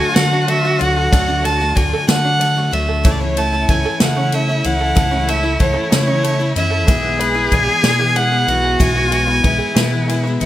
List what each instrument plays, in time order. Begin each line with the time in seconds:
Already playing: upright piano D2 D3 F#3 A3 D4 A4 C#5 D5 E5, steel-string acoustic guitar D3 A3 D4 F#4, five-string banjo A3 F#4, cello F#4, fiddle G#5
0.00 five-string banjo A4
0.14 steel-string acoustic guitar D3 A3 D4 F#4, fingered electric bass D3, upright piano F#3 A3 D4 A4 B4, five-string banjo A3, fiddle F#5, snare, ride
0.32 steel-string acoustic guitar A3 D4 F#4, five-string banjo D4
0.41 fiddle F#5
0.47 upright piano F#3 A3 D4 A4 D5, five-string banjo A3, fiddle E5, ride
0.64 steel-string acoustic guitar A3 D4 F#4, five-string banjo F#4
0.78 fingered electric bass D2, steel-string acoustic guitar D3 A3 D4 F#4, upright piano F#3 A3 D4 A4 D5, fiddle F#5, ride
0.96 five-string banjo A4
1.10 upright piano D2 D3 F#3 A3 D4 A4 D5, fingered electric bass D2, steel-string acoustic guitar D3 A3 D4 F#4, five-string banjo A3, kick, ride
1.28 steel-string acoustic guitar A3 D4 F#4, five-string banjo D4
1.42 upright piano F#3 A3 D4 A4 D5, five-string banjo A3, fiddle A5, ride
1.61 steel-string acoustic guitar A3 D4 F#4, five-string banjo F#4
1.74 fingered electric bass D2, steel-string acoustic guitar D3 A3 D4 F#4, upright piano F#3 A3 D4 A4 D5, five-string banjo A3, fiddle G#5, kick, ride
1.93 five-string banjo A4
2.07 steel-string acoustic guitar D3 A3 D4 F#4, fingered electric bass D3, upright piano F#3 A3 D4 A4 D5, five-string banjo A3, fiddle F#5, snare, ride
2.24 steel-string acoustic guitar A3 D4 F#4, five-string banjo D4
2.39 upright piano F#3 A3 D4 A4 D5, five-string banjo A3, ride
2.56 steel-string acoustic guitar A3 D4 F#4, five-string banjo F#4
2.71 fingered electric bass D2, steel-string acoustic guitar D3 A3 D4 F#4, upright piano F#3 A3 D4 A4 D5, fiddle E5, ride
2.88 five-string banjo A4
3.04 fingered electric bass C#2, upright piano C#2 C#3 A3 C#4 E4 C#5 E5, steel-string acoustic guitar C#3 E3 A3 C#4 E4, five-string banjo A3, cello E4, fiddle C#5, kick, ride
3.11 fiddle D5
3.20 steel-string acoustic guitar A3 C#4 E4, five-string banjo C#4, fiddle C#5
3.37 upright piano A3 C#4 E4 C#5 E5, five-string banjo A3, fiddle A5, ride
3.52 steel-string acoustic guitar A3 C#4 E4, five-string banjo E4
3.69 fingered electric bass C#2, steel-string acoustic guitar E3 A3 C#4 E4, upright piano A3 C#4 E4 C#5 E5, five-string banjo A3, fiddle G#5, kick, ride
3.85 five-string banjo A4
4.00 fingered electric bass C#3, steel-string acoustic guitar C#3 E3 A3 C#4 E4, upright piano A3 C#4 E4 C#5 E5, five-string banjo A3, fiddle F#5, snare, ride
4.16 steel-string acoustic guitar A3 C#4 E4, five-string banjo C#4
4.32 five-string banjo A3, upright piano A3 C#4 E4 C#5 E5, fiddle E5, ride
4.49 steel-string acoustic guitar A3 C#4 E4, five-string banjo E4
4.64 fingered electric bass C#2, steel-string acoustic guitar E3 A3 C#4 E4, upright piano A3 C#4 E4 C#5 E5, fiddle F#5, ride
4.80 five-string banjo A4
4.95 fingered electric bass C#2, upright piano C#2 C#3 A3 C#4 E4 C#5 E5, steel-string acoustic guitar C#3 E3 A3 C#4 E4, five-string banjo A3, kick, ride
5.11 steel-string acoustic guitar A3 C#4 E4, five-string banjo C#4
5.28 five-string banjo A3, upright piano A3 C#4 E4 C#5 E5, fiddle E5, ride
5.43 steel-string acoustic guitar A3 C#4 E4, five-string banjo E4
5.59 fingered electric bass C#2, steel-string acoustic guitar E3 A3 C#4 E4, five-string banjo A3, upright piano A3 C#4 E4 C#5 F#5, fiddle C#5, kick, ride
5.74 five-string banjo A4
5.90 steel-string acoustic guitar C#3 E3 A3 C#4 E4, fingered electric bass C#3, five-string banjo A3, upright piano A3 C#4 E4 C#5 E5, fiddle C#5, snare, ride
6.06 steel-string acoustic guitar A3 C#4 E4, five-string banjo C#4
6.23 five-string banjo A3, upright piano A3 C#4 E4 E5, ride
6.39 steel-string acoustic guitar A3 C#4 E4, five-string banjo E4
6.56 fingered electric bass F#2, steel-string acoustic guitar E3 A3 C#4 E4, upright piano A3 C#4 E4 C#5 E5, fiddle E5, ride
6.70 five-string banjo A4
6.86 fingered electric bass B1, upright piano B1 B2 G#3 B3 E4 B4 E5, steel-string acoustic guitar B2 E3 G#3 B3 E4, five-string banjo G#3, cello G#4, kick, ride
7.03 steel-string acoustic guitar G#3 B3 E4, five-string banjo B3
7.19 five-string banjo G#3, upright piano G#3 B3 E4 B4 E5, fiddle B4, ride
7.34 steel-string acoustic guitar G#3 B3 E4, five-string banjo E4
7.51 fingered electric bass B1, steel-string acoustic guitar E3 G#3 B3 E4, five-string banjo G#3, upright piano G#3 B3 E4 B4 D5, fiddle G#5, kick, ride
7.67 five-string banjo G#4
7.83 steel-string acoustic guitar B2 E3 G#3 B3 E4, fingered electric bass B2, five-string banjo G#3, upright piano G#3 B3 E4 B4 D5, snare, ride
7.98 steel-string acoustic guitar G#3 B3 E4, five-string banjo B3
8.15 upright piano G#3 B3 E4 B4 E5, five-string banjo G#3, fiddle F#5, ride
8.31 steel-string acoustic guitar G#3 B3 E4, five-string banjo E4
8.46 fingered electric bass B1, steel-string acoustic guitar E3 G#3 B3 E4, upright piano G#3 B3 E4 B4 E5, cello F#4, ride
8.64 five-string banjo G#4
8.79 fingered electric bass B1, upright piano B1 B2 G#3 B3 E4 B4 E5, steel-string acoustic guitar B2 E3 G#3 B3 E4, five-string banjo G#3, fiddle G#5, kick, ride
8.95 five-string banjo B3, steel-string acoustic guitar B3 E4
9.00 steel-string acoustic guitar G#3
9.11 five-string banjo G#3, upright piano G#3 B3 E4 B4 E5, ride
9.27 steel-string acoustic guitar G#3 B3 E4, five-string banjo E4
9.43 fingered electric bass B1, steel-string acoustic guitar E3 G#3 B3 E4, five-string banjo G#3, upright piano G#3 B3 E4 B4 E5, cello E4, kick, ride
9.58 five-string banjo G#4
9.75 fingered electric bass B2, steel-string acoustic guitar B2 E3 G#3 B3 E4, five-string banjo G#3, upright piano G#3 B3 E4 B4 E5, snare, ride
9.91 five-string banjo B3, steel-string acoustic guitar B3 E4
9.96 steel-string acoustic guitar G#3
10.08 five-string banjo G#3, upright piano G#3 B3 E4 B4 E5, ride
10.23 steel-string acoustic guitar B3 E4, five-string banjo E4
10.28 steel-string acoustic guitar G#3
10.39 fingered electric bass G#1, steel-string acoustic guitar E3 G#3 B3, upright piano G#3 B3 E4 B4 E5, cello E4, ride